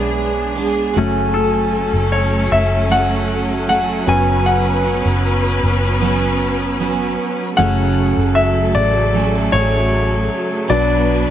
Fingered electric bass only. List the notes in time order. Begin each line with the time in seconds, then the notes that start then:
Already playing: B1
0.96 F#1
1.93 F#1
2.52 F#1
4.07 F#1
5.05 F#1
5.63 F#1
7.58 F#1
8.17 F#1
8.75 A1
9.53 A1
10.70 B1